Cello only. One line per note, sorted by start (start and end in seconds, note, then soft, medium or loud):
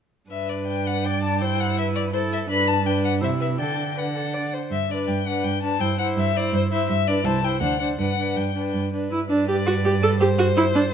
0.30 2.44 G2 soft
2.49 3.23 G2 soft
3.21 3.60 C3 soft
3.59 4.52 D3 soft
4.71 5.01 G2 soft
5.08 5.38 G2 medium
5.44 5.74 G2 soft
5.80 6.11 G2 medium
6.17 6.47 G2 medium
6.53 6.83 G2 medium
6.89 7.19 G2 medium
7.24 7.55 C2 medium
7.61 7.93 D2 medium
7.98 8.30 G2 medium
8.36 8.68 G2 soft
8.73 9.06 G2 soft
9.11 10.94 G2 medium